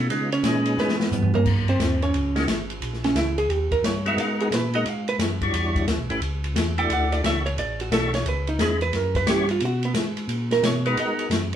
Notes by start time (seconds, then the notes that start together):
0.09 C#3 G#3 B3 C#4 D#4 F4, ride
0.32 C#4 C#5, ride
0.43 A#2 G#3 C#4 D#4 G#4 B4, snare, hi-hat pedal, ride
0.65 ride
0.77 G#2 B3 B4, snare
0.89 snare
1.00 snare
1.11 G2, floor tom, hi-hat pedal
1.22 floor tom
1.34 A#3 A#4, floor tom
1.45 F#2, kick, crash
1.68 C4 C5, ride
1.79 D#2, snare, hi-hat pedal, ride
2.02 C#4 C#5, ride
2.13 C#2, ride
2.35 G#3 A#3 C#4 D#4 F#4, snare, ride
2.47 G#1, snare, hi-hat pedal, ride
2.70 ride
2.81 A#1, ride
2.93 snare
3.04 C#4, snare, ride
3.14 C#2 E4, snare, hi-hat pedal, ride
3.38 G#4, ride
3.48 D#2 G4, ride
3.71 D#2 A#4, kick, ride
3.83 G2 C#5, snare, hi-hat pedal, ride
4.06 G#3 B3 D#4 F#4 A#4 E5, ride
4.17 G#2 F5, ride
4.40 G#4, ride
4.51 A#2 B4, snare, hi-hat pedal, ride
4.74 G#3 B3 D#4 F#4 A#4 D#5, ride
4.85 G#2 F5, ride
5.08 B4, ride
5.18 F#2, snare, hi-hat pedal, ride
5.41 G3 D4 E4 F#4 C#5, kick, ride
5.53 E2, ride
5.75 kick, ride
5.86 D2, snare, hi-hat pedal, ride
5.98 B1
6.10 G1 A3 C#4 E4 G4 B4, ride
6.21 C#2, ride
6.44 ride
6.54 E2, snare, hi-hat pedal, ride
6.78 A3 D4 E4 F#4 D5 G5, ride
6.89 D2 F#5, ride
7.12 D5, ride
7.23 C#2 A3 D4 E4 F#4 C#5 E5, snare, hi-hat pedal, ride
7.46 C#5, ride
7.57 A1 D5, ride
7.80 F#4, ride
7.90 B1 A3 D4 E4 F#4 A4 C#5, snare, hi-hat pedal, ride
8.13 C#5, snare, ride
8.24 C#2, ride
8.29 B4
8.47 D#4, ride
8.59 E2 G#3 C#4 D#4 E4 G#4 B4, snare, hi-hat pedal, ride
8.81 B4, ride
8.93 F#2 A#4, snare, ride
9.15 B4, kick, ride
9.27 G2 G3 C#4 E4 F#4 G4 C#5, snare, hi-hat pedal, ride
9.49 F4, ride
9.60 B2, ride
9.65 F#4
9.83 B3, ride
9.94 G#2, snare, hi-hat pedal, ride
10.17 ride
10.27 A#2, ride
10.51 A#4, snare, ride
10.62 B2 C#5, snare, hi-hat pedal, ride
10.86 G#3 B3 D#4 F#4 A#4 B4, ride
10.96 G#2 D#5, ride
11.19 ride
11.30 F#2, snare, hi-hat pedal, ride